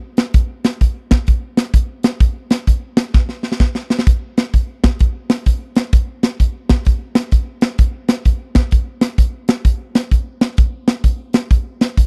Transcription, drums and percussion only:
0.17 snare loud
0.17 closed hi-hat medium
0.34 kick loud
0.34 closed hi-hat medium
0.64 snare medium
0.64 closed hi-hat medium
0.81 kick medium
0.81 closed hi-hat medium
1.11 kick medium
1.11 snare loud
1.11 closed hi-hat medium
1.27 kick medium
1.27 closed hi-hat medium
1.57 snare loud
1.57 closed hi-hat medium
1.74 kick medium
1.74 closed hi-hat medium
2.03 snare loud
2.03 closed hi-hat medium
2.20 kick medium
2.20 closed hi-hat medium
2.51 snare medium
2.51 closed hi-hat medium
2.67 kick medium
2.67 closed hi-hat medium
2.97 snare loud
2.97 closed hi-hat medium
3.14 kick loud
3.14 snare medium
3.29 snare soft
3.43 snare medium
3.52 snare medium
3.60 kick medium
3.60 snare medium
3.75 snare medium
3.90 snare medium
3.99 snare medium
4.07 kick loud
4.07 closed hi-hat medium
4.38 snare medium
4.38 closed hi-hat medium
4.54 kick medium
4.54 closed hi-hat medium
4.84 kick loud
4.84 snare loud
4.84 closed hi-hat medium
4.99 kick loud
4.99 closed hi-hat medium
5.30 snare loud
5.30 closed hi-hat medium
5.46 kick medium
5.46 closed hi-hat medium
5.76 snare loud
5.76 closed hi-hat medium
5.93 kick medium
5.93 closed hi-hat medium
6.23 snare medium
6.23 closed hi-hat medium
6.40 kick medium
6.40 closed hi-hat medium
6.69 kick loud
6.69 snare loud
6.69 closed hi-hat medium
6.85 kick loud
6.85 closed hi-hat medium
7.15 snare loud
7.15 closed hi-hat medium
7.32 kick medium
7.32 closed hi-hat medium
7.61 snare loud
7.61 closed hi-hat medium
7.78 kick loud
7.78 closed hi-hat medium
8.08 snare loud
8.08 closed hi-hat medium
8.25 kick medium
8.25 closed hi-hat medium
8.55 kick loud
8.55 snare loud
8.55 closed hi-hat medium
8.71 kick loud
8.71 closed hi-hat medium
9.01 snare loud
9.01 closed hi-hat medium
9.18 kick medium
9.18 closed hi-hat medium
9.48 snare loud
9.48 closed hi-hat medium
9.65 kick medium
9.65 closed hi-hat medium
9.95 snare loud
9.95 closed hi-hat medium
10.11 kick medium
10.11 closed hi-hat medium
10.41 snare loud
10.41 closed hi-hat medium
10.57 kick loud
10.57 closed hi-hat medium
10.88 snare loud
10.88 closed hi-hat medium
11.04 kick medium
11.04 closed hi-hat medium
11.33 snare loud
11.33 closed hi-hat medium
11.51 kick medium
11.51 closed hi-hat medium
11.81 snare medium
11.81 closed hi-hat medium
11.97 kick medium
11.97 closed hi-hat medium

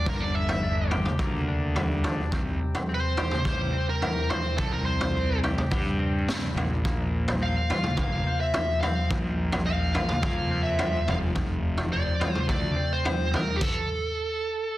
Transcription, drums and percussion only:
0.06 kick loud
0.06 floor tom medium
0.49 floor tom medium
0.91 floor tom medium
1.06 mid tom medium
1.19 kick loud
1.19 floor tom medium
1.76 floor tom medium
2.04 floor tom medium
2.32 kick medium
2.32 floor tom medium
2.75 floor tom medium
3.17 floor tom medium
3.31 mid tom medium
3.45 kick medium
3.45 floor tom medium
4.02 floor tom medium
4.30 floor tom medium
4.58 kick medium
4.58 floor tom medium
5.01 floor tom medium
5.44 floor tom medium
5.58 mid tom medium
5.71 kick loud
5.71 floor tom medium
6.28 snare medium
6.28 floor tom medium
6.28 mid tom medium
6.57 floor tom medium
6.85 kick loud
6.85 floor tom medium
7.28 floor tom medium
7.70 floor tom medium
7.84 mid tom medium
7.97 kick loud
7.97 floor tom medium
8.54 floor tom medium
8.83 floor tom medium
9.11 kick loud
9.11 floor tom medium
9.52 floor tom medium
9.95 floor tom medium
10.09 mid tom medium
10.23 kick loud
10.23 floor tom medium
10.79 floor tom medium
11.08 floor tom medium
11.36 kick medium
11.36 floor tom medium
11.78 floor tom medium
12.21 floor tom medium
12.35 mid tom medium
12.49 kick loud
12.49 floor tom medium
13.05 floor tom medium
13.34 floor tom medium
13.61 kick medium
13.61 crash medium

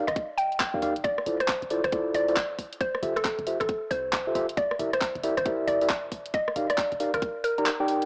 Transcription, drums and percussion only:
0.08 cross-stick medium
0.08 closed hi-hat medium
0.16 kick loud
0.16 closed hi-hat medium
0.38 open hi-hat loud
0.52 closed hi-hat soft
0.60 kick loud
0.60 clap loud
0.82 kick medium
0.82 open hi-hat loud
0.96 closed hi-hat medium
1.04 kick loud
1.04 closed hi-hat medium
1.18 cross-stick medium
1.26 open hi-hat loud
1.40 cross-stick medium
1.40 closed hi-hat medium
1.48 kick loud
1.48 clap loud
1.62 closed hi-hat soft
1.70 open hi-hat loud
1.84 cross-stick medium
1.84 closed hi-hat medium
1.92 kick loud
1.92 closed hi-hat medium
2.14 open hi-hat loud
2.28 open hi-hat medium
2.37 kick loud
2.37 clap loud
2.59 kick medium
2.59 open hi-hat loud
2.73 closed hi-hat medium
2.81 kick loud
2.81 closed hi-hat medium
2.95 cross-stick medium
3.03 open hi-hat loud
3.17 cross-stick medium
3.17 closed hi-hat medium
3.25 kick loud
3.25 clap loud
3.39 closed hi-hat soft
3.47 open hi-hat loud
3.61 cross-stick medium
3.61 closed hi-hat medium
3.69 kick loud
3.69 closed hi-hat medium
3.91 open hi-hat loud
4.13 kick loud
4.13 clap loud
4.35 kick medium
4.35 open hi-hat loud
4.49 closed hi-hat medium
4.57 kick loud
4.57 closed hi-hat medium
4.71 cross-stick medium
4.79 open hi-hat loud
4.93 cross-stick medium
4.93 closed hi-hat medium
5.01 kick loud
5.01 clap loud
5.15 closed hi-hat soft
5.24 open hi-hat loud
5.37 cross-stick medium
5.37 closed hi-hat medium
5.46 kick loud
5.46 closed hi-hat medium
5.68 open hi-hat loud
5.81 open hi-hat medium
5.90 kick loud
5.90 clap loud
6.12 kick medium
6.12 open hi-hat loud
6.26 closed hi-hat medium
6.34 kick loud
6.34 closed hi-hat medium
6.48 cross-stick medium
6.56 open hi-hat loud
6.70 cross-stick medium
6.70 closed hi-hat medium
6.78 kick loud
6.78 clap loud
6.92 closed hi-hat soft
7.00 open hi-hat loud
7.14 cross-stick medium
7.14 closed hi-hat medium
7.22 kick loud
7.22 closed hi-hat medium
7.44 open hi-hat loud
7.58 closed hi-hat soft
7.66 clap loud
7.88 open hi-hat loud
8.02 closed hi-hat medium

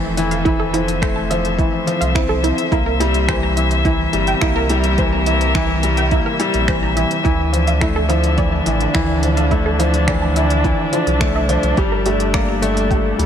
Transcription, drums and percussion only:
0.17 closed hi-hat medium
0.31 closed hi-hat soft
0.46 kick loud
0.46 closed hi-hat soft
0.74 closed hi-hat medium
0.88 closed hi-hat soft
1.02 finger snap medium
1.02 kick loud
1.02 closed hi-hat soft
1.31 closed hi-hat medium
1.45 closed hi-hat soft
1.59 kick loud
1.59 closed hi-hat soft
1.87 closed hi-hat medium
2.02 closed hi-hat soft
2.15 finger snap medium
2.15 kick loud
2.15 closed hi-hat soft
2.44 closed hi-hat medium
2.58 closed hi-hat soft
2.72 kick medium
2.72 closed hi-hat soft
3.01 closed hi-hat medium
3.14 closed hi-hat soft
3.28 finger snap medium
3.28 kick loud
3.28 closed hi-hat soft
3.57 closed hi-hat medium
3.71 closed hi-hat soft
3.85 kick loud
3.85 closed hi-hat soft
4.13 closed hi-hat medium
4.27 closed hi-hat soft
4.42 finger snap medium
4.42 kick loud
4.42 closed hi-hat soft
4.70 closed hi-hat medium
4.84 closed hi-hat soft
4.98 kick loud
4.98 closed hi-hat soft
5.26 closed hi-hat medium
5.41 closed hi-hat soft
5.55 finger snap medium
5.55 kick loud
5.55 closed hi-hat soft
5.83 closed hi-hat medium
5.97 closed hi-hat soft
6.11 kick medium
6.11 closed hi-hat soft
6.40 closed hi-hat medium
6.54 closed hi-hat soft
6.68 finger snap medium
6.68 kick loud
6.68 closed hi-hat soft
6.97 closed hi-hat medium
7.11 closed hi-hat soft
7.25 kick loud
7.25 closed hi-hat soft
7.54 closed hi-hat medium
7.67 closed hi-hat soft
7.81 finger snap medium
7.81 kick loud
7.81 closed hi-hat soft
8.10 closed hi-hat medium
8.24 closed hi-hat soft
8.38 kick medium
8.38 closed hi-hat soft
8.66 closed hi-hat medium
8.80 closed hi-hat soft
8.95 finger snap medium
8.95 kick medium
8.95 closed hi-hat soft
9.23 closed hi-hat medium
9.37 closed hi-hat soft
9.51 kick medium
9.51 closed hi-hat soft
9.80 closed hi-hat medium
9.94 closed hi-hat soft
10.08 finger snap medium
10.08 kick loud
10.08 closed hi-hat soft
10.36 closed hi-hat medium
10.50 closed hi-hat soft
10.64 kick medium
10.64 closed hi-hat soft
10.93 closed hi-hat medium
11.07 closed hi-hat soft
11.21 finger snap medium
11.21 kick medium
11.21 closed hi-hat soft
11.49 closed hi-hat medium
11.63 closed hi-hat soft
11.77 kick loud
11.77 closed hi-hat soft
12.06 closed hi-hat medium
12.20 closed hi-hat soft
12.34 finger snap medium
12.34 kick loud
12.34 closed hi-hat soft
12.63 closed hi-hat medium
12.77 closed hi-hat soft
12.91 kick medium
12.91 closed hi-hat soft
13.19 closed hi-hat medium

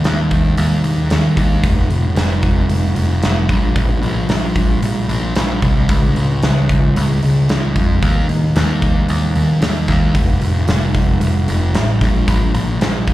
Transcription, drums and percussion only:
0.04 snare loud
0.04 open hi-hat medium
0.31 kick medium
0.31 open hi-hat soft
0.57 open hi-hat medium
0.84 open hi-hat soft
1.10 snare loud
1.10 open hi-hat medium
1.37 kick medium
1.37 open hi-hat soft
1.64 kick medium
1.64 open hi-hat medium
1.90 open hi-hat soft
2.16 snare loud
2.16 open hi-hat medium
2.43 kick medium
2.43 open hi-hat soft
2.69 open hi-hat medium
2.96 open hi-hat soft
3.23 snare loud
3.23 open hi-hat medium
3.49 kick medium
3.49 open hi-hat soft
3.76 kick medium
3.76 open hi-hat medium
4.03 open hi-hat soft
4.29 snare medium
4.29 open hi-hat medium
4.56 kick medium
4.56 open hi-hat soft
4.82 open hi-hat medium
5.09 open hi-hat soft
5.36 snare loud
5.36 open hi-hat medium
5.62 kick medium
5.62 open hi-hat soft
5.89 kick medium
5.89 open hi-hat medium
6.16 open hi-hat soft
6.43 snare loud
6.43 open hi-hat medium
6.69 kick medium
6.69 open hi-hat soft
6.96 open hi-hat medium
7.23 open hi-hat soft
7.49 snare loud
7.49 open hi-hat medium
7.76 kick medium
7.76 open hi-hat soft
8.02 kick medium
8.02 open hi-hat medium
8.29 open hi-hat soft
8.56 snare loud
8.56 open hi-hat medium
8.82 kick medium
8.82 open hi-hat soft
9.09 open hi-hat medium
9.36 open hi-hat soft
9.62 snare loud
9.62 open hi-hat medium
9.88 kick medium
9.88 snare soft
9.88 open hi-hat soft
10.15 kick medium
10.15 open hi-hat medium
10.42 open hi-hat medium
10.68 snare loud
10.68 open hi-hat medium
10.95 kick medium
10.95 open hi-hat soft
11.21 open hi-hat medium
11.48 open hi-hat medium
11.75 snare loud
11.75 open hi-hat medium
12.01 kick medium
12.01 snare soft
12.01 open hi-hat soft
12.28 kick loud
12.28 open hi-hat medium
12.55 open hi-hat soft
12.81 snare loud
12.81 open hi-hat medium
13.08 kick medium
13.08 open hi-hat soft

